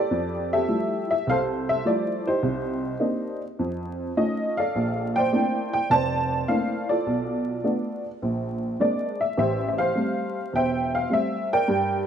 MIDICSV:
0, 0, Header, 1, 2, 480
1, 0, Start_track
1, 0, Key_signature, -1, "major"
1, 0, Tempo, 578592
1, 95, Time_signature, 4, 2, 24, 8
1, 10011, End_track
2, 0, Start_track
2, 0, Title_t, "Honky-tonk piano"
2, 0, Program_c, 0, 3
2, 0, Note_on_c, 0, 67, 64
2, 0, Note_on_c, 0, 69, 64
2, 0, Note_on_c, 0, 74, 95
2, 88, Note_on_c, 0, 41, 71
2, 398, Note_off_c, 0, 74, 0
2, 431, Note_off_c, 0, 67, 0
2, 437, Note_off_c, 0, 69, 0
2, 440, Note_on_c, 0, 76, 92
2, 443, Note_on_c, 0, 67, 71
2, 450, Note_on_c, 0, 69, 71
2, 510, Note_off_c, 0, 41, 0
2, 563, Note_on_c, 0, 53, 48
2, 565, Note_on_c, 0, 55, 45
2, 566, Note_on_c, 0, 57, 46
2, 571, Note_on_c, 0, 64, 53
2, 906, Note_off_c, 0, 76, 0
2, 916, Note_off_c, 0, 53, 0
2, 916, Note_off_c, 0, 55, 0
2, 917, Note_off_c, 0, 57, 0
2, 918, Note_on_c, 0, 76, 88
2, 919, Note_off_c, 0, 64, 0
2, 1055, Note_on_c, 0, 36, 65
2, 1066, Note_off_c, 0, 76, 0
2, 1067, Note_off_c, 0, 69, 0
2, 1074, Note_on_c, 0, 77, 100
2, 1080, Note_on_c, 0, 69, 74
2, 1081, Note_on_c, 0, 72, 75
2, 1147, Note_off_c, 0, 77, 0
2, 1362, Note_off_c, 0, 67, 0
2, 1403, Note_on_c, 0, 76, 99
2, 1474, Note_off_c, 0, 36, 0
2, 1536, Note_on_c, 0, 53, 54
2, 1537, Note_on_c, 0, 57, 49
2, 1540, Note_on_c, 0, 55, 46
2, 1540, Note_on_c, 0, 64, 59
2, 1548, Note_off_c, 0, 76, 0
2, 1549, Note_on_c, 0, 74, 83
2, 1874, Note_off_c, 0, 72, 0
2, 1882, Note_off_c, 0, 53, 0
2, 1883, Note_off_c, 0, 57, 0
2, 1883, Note_off_c, 0, 74, 0
2, 1884, Note_off_c, 0, 55, 0
2, 1884, Note_off_c, 0, 64, 0
2, 1886, Note_on_c, 0, 72, 84
2, 1891, Note_on_c, 0, 67, 55
2, 1892, Note_on_c, 0, 63, 56
2, 1995, Note_off_c, 0, 69, 0
2, 2014, Note_on_c, 0, 36, 73
2, 2434, Note_off_c, 0, 36, 0
2, 2478, Note_off_c, 0, 63, 0
2, 2484, Note_on_c, 0, 58, 46
2, 2487, Note_on_c, 0, 62, 47
2, 2490, Note_on_c, 0, 60, 49
2, 2490, Note_on_c, 0, 63, 57
2, 2804, Note_off_c, 0, 72, 0
2, 2806, Note_off_c, 0, 67, 0
2, 2837, Note_off_c, 0, 58, 0
2, 2838, Note_off_c, 0, 62, 0
2, 2840, Note_off_c, 0, 60, 0
2, 2840, Note_off_c, 0, 63, 0
2, 2978, Note_on_c, 0, 41, 68
2, 3396, Note_off_c, 0, 41, 0
2, 3459, Note_on_c, 0, 57, 57
2, 3462, Note_on_c, 0, 75, 81
2, 3463, Note_on_c, 0, 61, 50
2, 3464, Note_on_c, 0, 65, 59
2, 3468, Note_on_c, 0, 63, 50
2, 3795, Note_on_c, 0, 77, 88
2, 3801, Note_off_c, 0, 75, 0
2, 3804, Note_off_c, 0, 57, 0
2, 3806, Note_off_c, 0, 61, 0
2, 3807, Note_off_c, 0, 65, 0
2, 3809, Note_off_c, 0, 63, 0
2, 3811, Note_on_c, 0, 74, 64
2, 3812, Note_on_c, 0, 69, 65
2, 3943, Note_on_c, 0, 34, 68
2, 4278, Note_on_c, 0, 79, 98
2, 4282, Note_off_c, 0, 74, 0
2, 4286, Note_off_c, 0, 77, 0
2, 4294, Note_on_c, 0, 74, 68
2, 4295, Note_on_c, 0, 72, 73
2, 4359, Note_off_c, 0, 34, 0
2, 4417, Note_on_c, 0, 57, 50
2, 4417, Note_on_c, 0, 58, 42
2, 4420, Note_on_c, 0, 60, 48
2, 4422, Note_on_c, 0, 62, 46
2, 4427, Note_on_c, 0, 64, 58
2, 4727, Note_off_c, 0, 69, 0
2, 4744, Note_off_c, 0, 79, 0
2, 4757, Note_on_c, 0, 79, 93
2, 4764, Note_off_c, 0, 57, 0
2, 4764, Note_off_c, 0, 58, 0
2, 4765, Note_off_c, 0, 60, 0
2, 4766, Note_off_c, 0, 62, 0
2, 4768, Note_off_c, 0, 64, 0
2, 4891, Note_off_c, 0, 79, 0
2, 4895, Note_on_c, 0, 29, 75
2, 4901, Note_off_c, 0, 74, 0
2, 4902, Note_on_c, 0, 81, 110
2, 4904, Note_off_c, 0, 72, 0
2, 4913, Note_on_c, 0, 74, 70
2, 4917, Note_on_c, 0, 72, 68
2, 5315, Note_off_c, 0, 29, 0
2, 5379, Note_on_c, 0, 77, 89
2, 5380, Note_on_c, 0, 57, 53
2, 5384, Note_on_c, 0, 60, 51
2, 5387, Note_on_c, 0, 58, 44
2, 5388, Note_on_c, 0, 64, 57
2, 5389, Note_on_c, 0, 62, 45
2, 5394, Note_off_c, 0, 81, 0
2, 5686, Note_off_c, 0, 77, 0
2, 5706, Note_off_c, 0, 74, 0
2, 5718, Note_on_c, 0, 74, 81
2, 5725, Note_off_c, 0, 57, 0
2, 5727, Note_off_c, 0, 60, 0
2, 5728, Note_off_c, 0, 58, 0
2, 5729, Note_off_c, 0, 62, 0
2, 5729, Note_off_c, 0, 64, 0
2, 5729, Note_on_c, 0, 65, 58
2, 5731, Note_on_c, 0, 69, 57
2, 5834, Note_off_c, 0, 72, 0
2, 5859, Note_on_c, 0, 35, 67
2, 6277, Note_off_c, 0, 35, 0
2, 6336, Note_on_c, 0, 57, 47
2, 6340, Note_on_c, 0, 59, 48
2, 6343, Note_on_c, 0, 62, 57
2, 6640, Note_off_c, 0, 74, 0
2, 6645, Note_off_c, 0, 65, 0
2, 6646, Note_off_c, 0, 69, 0
2, 6683, Note_off_c, 0, 57, 0
2, 6685, Note_off_c, 0, 59, 0
2, 6686, Note_off_c, 0, 62, 0
2, 6823, Note_on_c, 0, 34, 67
2, 7238, Note_off_c, 0, 34, 0
2, 7298, Note_on_c, 0, 58, 51
2, 7299, Note_on_c, 0, 60, 44
2, 7300, Note_on_c, 0, 56, 54
2, 7303, Note_on_c, 0, 62, 56
2, 7308, Note_on_c, 0, 74, 81
2, 7637, Note_on_c, 0, 76, 86
2, 7643, Note_off_c, 0, 58, 0
2, 7643, Note_off_c, 0, 74, 0
2, 7644, Note_off_c, 0, 56, 0
2, 7644, Note_off_c, 0, 60, 0
2, 7646, Note_off_c, 0, 62, 0
2, 7771, Note_off_c, 0, 76, 0
2, 7777, Note_on_c, 0, 33, 73
2, 7789, Note_on_c, 0, 76, 89
2, 7799, Note_on_c, 0, 67, 64
2, 7800, Note_on_c, 0, 72, 64
2, 8016, Note_off_c, 0, 76, 0
2, 8034, Note_on_c, 0, 76, 65
2, 8111, Note_off_c, 0, 76, 0
2, 8117, Note_off_c, 0, 72, 0
2, 8117, Note_on_c, 0, 77, 93
2, 8129, Note_on_c, 0, 72, 71
2, 8195, Note_off_c, 0, 33, 0
2, 8253, Note_on_c, 0, 55, 52
2, 8257, Note_on_c, 0, 57, 42
2, 8261, Note_on_c, 0, 60, 58
2, 8600, Note_off_c, 0, 55, 0
2, 8602, Note_off_c, 0, 57, 0
2, 8604, Note_off_c, 0, 60, 0
2, 8714, Note_off_c, 0, 67, 0
2, 8732, Note_on_c, 0, 28, 71
2, 8749, Note_off_c, 0, 72, 0
2, 8756, Note_on_c, 0, 79, 89
2, 8759, Note_off_c, 0, 77, 0
2, 8761, Note_on_c, 0, 72, 66
2, 8762, Note_on_c, 0, 76, 70
2, 9081, Note_on_c, 0, 77, 88
2, 9086, Note_off_c, 0, 79, 0
2, 9152, Note_off_c, 0, 28, 0
2, 9205, Note_on_c, 0, 55, 52
2, 9212, Note_on_c, 0, 57, 46
2, 9213, Note_off_c, 0, 77, 0
2, 9213, Note_on_c, 0, 60, 54
2, 9224, Note_off_c, 0, 76, 0
2, 9236, Note_on_c, 0, 76, 96
2, 9534, Note_off_c, 0, 76, 0
2, 9556, Note_off_c, 0, 55, 0
2, 9559, Note_off_c, 0, 57, 0
2, 9560, Note_off_c, 0, 60, 0
2, 9566, Note_on_c, 0, 79, 101
2, 9568, Note_on_c, 0, 70, 76
2, 9569, Note_on_c, 0, 74, 72
2, 9674, Note_off_c, 0, 72, 0
2, 9691, Note_on_c, 0, 43, 77
2, 10003, Note_off_c, 0, 79, 0
2, 10011, Note_off_c, 0, 43, 0
2, 10011, Note_off_c, 0, 70, 0
2, 10011, Note_off_c, 0, 74, 0
2, 10011, End_track
0, 0, End_of_file